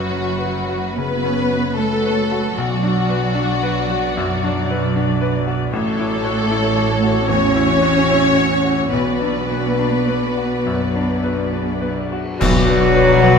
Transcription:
Already playing: double bass section F#1, grand piano F#2 C#4 B4, harp F#2 C#4 F#4, cello section F#3, violin section F#4, viola section F#4 B4
0.09 grand piano C#4, harp B4
0.38 grand piano B4, harp C#5
0.68 grand piano F#4, harp B4
0.96 harp C#3, grand piano C#3, cello section B3, violin section B4
1.25 harp C#4, grand piano C#4
1.52 harp F#4, grand piano B4
1.77 cello section A3, grand piano C#4, violin section A4, harp B4
2.05 grand piano B4, harp C#5
2.31 grand piano F#4, harp B4
2.56 double bass section B1, grand piano B1, harp B2, cello section F#3, violin section F#4, viola section D5
2.83 harp D4, grand piano D4
3.09 harp F#4, grand piano B4
3.35 grand piano D4, harp B4
3.62 grand piano B4, harp D5
3.90 grand piano F#4, harp B4
4.17 grand piano F#2, harp F#3
4.44 harp D4, grand piano D4
4.70 harp F#4, grand piano B4
4.96 grand piano D4, harp B4
5.21 grand piano B4, harp D5
5.47 grand piano F#4, harp B4
5.72 double bass section A1, grand piano A1, harp A2, cello section A3, viola section F#4 C#5, violin section A4
5.99 harp E4, grand piano E4
6.25 harp F#4, grand piano C#5
6.51 grand piano E4, harp C#5
6.76 grand piano C#5, harp E5
7.02 grand piano F#4, harp C#5
7.27 grand piano E2, harp E3, cello section C#4, violin section C#5
7.55 harp E4, grand piano E4
7.82 harp F#4, grand piano C#5
8.09 grand piano E4, harp C#5
8.36 grand piano C#5, harp E5
8.64 grand piano F#4, harp C#5
8.92 double bass section B1, grand piano B1, harp B2, cello section B3, violin section B4, viola section D5
9.21 grand piano D4, harp D4
9.50 harp F#4, grand piano B4
9.79 grand piano D4, harp B4
10.08 grand piano B4, harp D5
10.36 grand piano F#4, harp B4
10.65 grand piano F#2, harp F#3
10.94 harp D4, grand piano D4
11.23 harp F#4, grand piano B4
11.53 grand piano D4, harp B4
11.81 grand piano B4, harp D5
12.12 grand piano F#4, harp B4
12.39 double bass section B1, grand piano B1, harp B2, timpani B2, french horn F#3, french horn section F#3, cello section F#3, viola section D4 B4, clarinet F#4, oboe F#4, violin section D5, concert bass drum, crash
12.68 grand piano B3, harp B3
12.95 grand piano B4
13.22 grand piano B3, harp B4

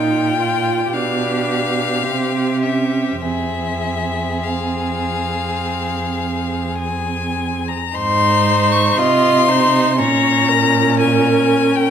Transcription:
Already playing: cello A#2, viola D#4, violin F4 G5
0.39 viola F4
0.93 cello B2, viola D4, violin G4 F5
2.03 cello C3, viola C4
2.62 viola C#4, violin E5
3.22 cello F2, viola C4, violin G#4 E5
4.44 violin F5
6.79 violin G#5
7.68 violin A#5
7.95 cello G#2, violin D#4 C6, viola C5
8.72 violin C#6
8.97 cello C3, violin F4 C6, viola D#5
9.48 violin D#4, viola C5
9.99 cello A#2, violin C#4 A#5, viola C#5
10.49 viola A#4
10.99 violin G#5
11.75 violin G5

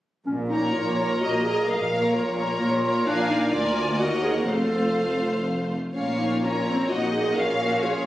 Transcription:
0.26 double bass section A#1, cello section A#2, clarinet C#4
0.50 viola section A#3 A#4, clarinet D#4, violin section C#5 A#5
0.72 double bass section A#1, cello section A#2, clarinet F4, violin section C#5
0.98 viola section A#3 A#4, violin section C#5 A#5
1.21 double bass section A#1, cello section A#2, viola section A#3 A#4, clarinet F#4, violin section D#5 A#5
1.44 viola section A#3 A#4, clarinet G#4, violin section D#5 A#5
1.68 double bass section A#1, cello section A#2, clarinet A#4, violin section F5
1.92 viola section A#3 A#4, violin section C#5 A#5
2.14 double bass section A#1, cello section A#2, clarinet F4, violin section C#5
2.37 viola section A#3 A#4, violin section C#5 A#5
2.60 double bass section A#1, cello section A#2, clarinet F4
2.84 viola section A#3 A#4, violin section C#5 A#5
3.06 double bass section A#1, cello section A#2, viola section A#3 A#4, clarinet D4, violin section D5 F5 G#5
3.31 clarinet D#4
3.50 double bass section D2, cello section D2, viola section A#3 A#4, clarinet F4, violin section D5 G#5
3.98 double bass section D#2, cello section D#2, viola section A#3 A#4, clarinet F#4, violin section D#5 F#5
4.23 clarinet G#4, violin section C#5
4.46 double bass section F1, cello section F2, viola section A3 F4, clarinet A4, violin section C5 F5
5.93 double bass section A#1, cello section A#2, viola section A#3 F4, clarinet C#4, violin section C#5 F5
6.19 clarinet D#4
6.42 viola section C#4, clarinet F4, violin section A#4 C#5 A#5
6.67 viola section C4
6.89 double bass section A#1, cello section A#2, viola section A#3 D#4, clarinet F#4, violin section D#5 F#5
7.12 clarinet G#4
7.35 double bass section A#1, cello section A#2, viola section C#4 F4, clarinet A#4, violin section C#5 F5
7.59 viola section F#4
7.81 clarinet F4, viola section G#4, violin section C#5 F5

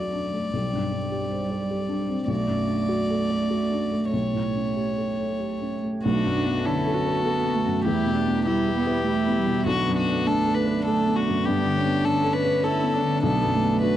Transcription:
Already playing: felt piano B1 F#2 D4 F#4 A4 D5, cello F#3, harmonium A3 F#4 D5, violin D5
0.13 felt piano D4
0.33 felt piano A3
0.52 felt piano B1, cello G3, harmonium C4 G4
0.73 felt piano G2
0.92 felt piano D4
1.12 felt piano G4
1.31 felt piano C5
1.50 felt piano D5
1.71 felt piano G4
1.89 felt piano D4
2.08 felt piano C4
2.27 felt piano B1, harmonium A3 F#4, cello A3, violin D5
2.48 felt piano F#2
2.68 felt piano D4
2.89 felt piano F#4
3.10 felt piano A4
3.30 felt piano D5
3.50 felt piano F#4
3.70 felt piano D4
3.91 felt piano A3
4.10 felt piano B1, harmonium G4 C#5, violin C#5
4.33 felt piano A2
4.56 felt piano C#4
4.76 felt piano G4
4.97 felt piano A4
5.19 felt piano C#5
5.40 felt piano G4
5.61 felt piano C#4
5.83 felt piano A3
6.02 felt piano B1, harmonium A3 F#4 B4, cello A3, viola D4, violin F#4
6.25 felt piano F#2
6.35 cello D4
6.45 felt piano B3
6.65 felt piano D3, cello C#4, viola E4, violin A4
6.87 felt piano A4
6.95 viola F#4
7.07 felt piano B4
7.25 cello B3, felt piano A4
7.45 felt piano B3
7.55 cello A3
7.66 felt piano F#2
7.85 felt piano E2, harmonium G3 E4 B4, viola E4, violin G4
8.06 felt piano B2
8.15 viola D4
8.27 felt piano B3
8.46 cello G3, viola E4, felt piano E4, violin G4
8.68 felt piano G4
8.76 cello B3
8.87 felt piano B4
9.06 cello A3, viola E4, felt piano G4
9.27 felt piano B3
9.38 cello G3
9.47 felt piano B2
9.66 felt piano B1, harmonium D3 A3, cello B3, viola D4, violin F#4
9.88 felt piano F#2
9.97 violin F#4
10.07 felt piano B3
10.26 cello A3, felt piano D4, violin A4
10.46 felt piano A4
10.54 violin B4
10.66 felt piano B4
10.85 cello A3, violin A4, felt piano A4
11.07 felt piano B3
11.16 violin F#4
11.28 felt piano F#2
11.45 felt piano G2, cello B3, viola D4, violin G4
11.65 felt piano D3
11.77 cello C#4
11.86 felt piano B3
12.04 felt piano D3, violin A4
12.24 felt piano A4
12.33 violin B4
12.45 felt piano B4
12.63 viola E4, felt piano A4, violin A4
12.83 felt piano B3
12.94 viola D4
13.03 felt piano D3
13.23 felt piano B1, cello B3, viola D4, violin A4, harmonium B4
13.44 felt piano F#2
13.54 cello A3
13.62 felt piano B3
13.82 felt piano D4, viola F#4, violin B4

